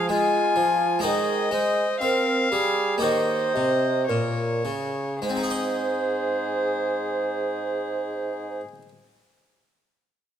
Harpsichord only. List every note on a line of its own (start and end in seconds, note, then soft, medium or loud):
0.00 0.98 G#4 medium
0.00 0.98 C#5 soft
0.09 0.52 G#3 medium
0.56 1.00 F3 medium
0.99 1.50 G#3 soft
0.99 2.97 G#4 soft
0.99 2.98 C5 soft
1.04 1.48 D#3 medium
1.51 1.97 G#3 medium
2.01 2.48 C4 medium
2.52 2.99 G3 medium
2.98 3.51 A#3 soft
2.98 5.17 G4 soft
2.98 5.18 C#5 soft
3.02 3.51 D#3 medium
3.56 4.06 C3 medium
4.10 4.62 A#2 soft
4.65 5.18 C#3 soft
5.22 8.61 G#3 soft
5.30 8.68 C4 soft
5.36 8.75 D#4 medium
5.43 8.82 G#4 soft
5.50 8.89 D#5 medium